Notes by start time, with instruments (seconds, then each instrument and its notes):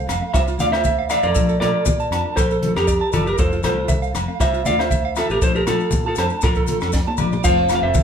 0.07 fingered electric bass F1, nylon-string guitar E3 A3 C4, clean electric guitar F5, cross-stick, closed hi-hat, low agogo, maracas
0.21 nylon-string guitar A3 C4, clean electric guitar F5
0.33 fingered electric bass C2, clean electric guitar F4 C5 E5, kick, cross-stick, muted conga, low agogo, maracas
0.48 clean electric guitar F4, maracas
0.57 fingered electric bass D2, nylon-string guitar E3 A3 C4, clean electric guitar F4 D5 F5, closed hi-hat, high conga, maracas
0.70 nylon-string guitar A3 C4, clean electric guitar C5 E5, cross-stick, low agogo, maracas
0.74 clean electric guitar F4
0.84 clean electric guitar E5, kick, high conga, maracas
0.99 clean electric guitar F5
1.08 nylon-string guitar E3 A3 C4, clean electric guitar D5 E5 F5, cross-stick, closed hi-hat, muted conga, low agogo, maracas
1.23 fingered electric bass F2, clean electric guitar A4 A#4 D5, maracas
1.35 fingered electric bass A#1, nylon-string guitar F3 A3 D4, clean electric guitar A4, kick, muted conga, maracas
1.49 clean electric guitar A4, maracas
1.60 fingered electric bass A#2, nylon-string guitar F3 A3 D4, clean electric guitar A4 A#4 D5, cross-stick, closed hi-hat, muted conga, low agogo
1.74 clean electric guitar A4
1.86 fingered electric bass A#2, clean electric guitar D5, kick, high conga, maracas
2.00 clean electric guitar A5, maracas
2.11 fingered electric bass F2, nylon-string guitar F3 D4, clean electric guitar A5, muted nylon-string guitar stroke, cross-stick, closed hi-hat, low agogo
2.24 nylon-string guitar A3 D4, clean electric guitar A5
2.36 fingered electric bass A#1, clean electric guitar A4 C5, kick, cross-stick, muted conga, low agogo, maracas
2.51 clean electric guitar A4, maracas
2.62 nylon-string guitar F3 A3 D4, clean electric guitar A4, closed hi-hat, high conga
2.76 fingered electric bass F2, nylon-string guitar A3, clean electric guitar G4 A4 A#4, cross-stick, low agogo, maracas
2.87 clean electric guitar D5, kick, maracas
3.01 clean electric guitar A5
3.12 fingered electric bass F#1, nylon-string guitar F3 A3, clean electric guitar F4 A4 D5, muted nylon-string guitar stroke, closed hi-hat, muted conga, high conga, low conga, low agogo, maracas
3.27 clean electric guitar G4 A#4, maracas
3.36 fingered electric bass F1, nylon-string guitar E3 A3 C4, clean electric guitar F4 A4, kick, muted conga, maracas
3.40 clean electric guitar C5
3.52 clean electric guitar F4, maracas
3.62 fingered electric bass C2, nylon-string guitar E3 A3 C4, clean electric guitar F4 A4 C5, cross-stick, closed hi-hat, muted conga, low agogo, maracas
3.78 clean electric guitar F4
3.88 fingered electric bass C2, clean electric guitar E5, kick, high conga, maracas
4.02 clean electric guitar F5, maracas
4.13 fingered electric bass F1, nylon-string guitar E3 A3 C4, cross-stick, closed hi-hat, low agogo, maracas
4.28 nylon-string guitar A3 C4, clean electric guitar F5
4.40 fingered electric bass C2, clean electric guitar F4 C5 E5, kick, cross-stick, muted conga, low agogo, maracas
4.53 clean electric guitar F4, maracas
4.65 fingered electric bass D2, nylon-string guitar E3 A3 C4, clean electric guitar F4 D5 F5, closed hi-hat, high conga, maracas
4.78 nylon-string guitar A3 C4, clean electric guitar F4 C5 E5, cross-stick, low agogo, maracas
4.90 clean electric guitar E5, kick, high conga, maracas
5.05 clean electric guitar F5
5.14 nylon-string guitar E3 A3 C4, clean electric guitar F4 A4 E5, cross-stick, closed hi-hat, muted conga, low agogo, maracas
5.30 fingered electric bass A1, clean electric guitar G4 A4 A#4, maracas
5.41 fingered electric bass A#1, nylon-string guitar F3 A3 D4, clean electric guitar A4 C5, muted clean electric guitar stroke, kick, muted conga, maracas
5.55 clean electric guitar G4 A4 A#4, maracas
5.66 fingered electric bass A#2, nylon-string guitar F3 A3 D4, clean electric guitar F4 A4, cross-stick, closed hi-hat, muted conga, low agogo, maracas
5.80 clean electric guitar A4, maracas
5.91 fingered electric bass A#2, kick, high conga, maracas
6.06 clean electric guitar F4 A4 A5
6.15 fingered electric bass F2, nylon-string guitar F3 A3 D4, clean electric guitar A4 C5 A5, cross-stick, closed hi-hat, low agogo, maracas
6.29 nylon-string guitar A3 D4, clean electric guitar A5, maracas
6.41 fingered electric bass A#1, clean electric guitar F4 A4 A#4, kick, cross-stick, muted conga, low conga, low agogo, maracas
6.55 clean electric guitar A4, kick, maracas
6.67 nylon-string guitar F3 A3 D4, clean electric guitar A4, closed hi-hat, high conga, maracas
6.81 fingered electric bass F2, nylon-string guitar A3 D4, clean electric guitar A4, cross-stick, low agogo, maracas
6.92 clean electric guitar D5, kick, snare, maracas
7.07 clean electric guitar A5, high tom
7.18 fingered electric bass A#1, nylon-string guitar F3 A3 D4, clean electric guitar D5, mid tom, muted conga, high conga, low conga, low agogo, maracas
7.32 clean electric guitar D5, floor tom, maracas
7.44 fingered electric bass F1, nylon-string guitar F3 A3 C4, tonewheel organ C4 F4 A5, clean electric guitar F4 C5 F5, kick, crash, muted conga, maracas
7.57 clean electric guitar C5
7.68 nylon-string guitar F3 A3, clean electric guitar F4, cross-stick, closed hi-hat, low agogo, maracas
7.72 nylon-string guitar C4, clean electric guitar F5
7.83 fingered electric bass F1, nylon-string guitar A3 C4, clean electric guitar C5 E5
7.94 kick, high conga, maracas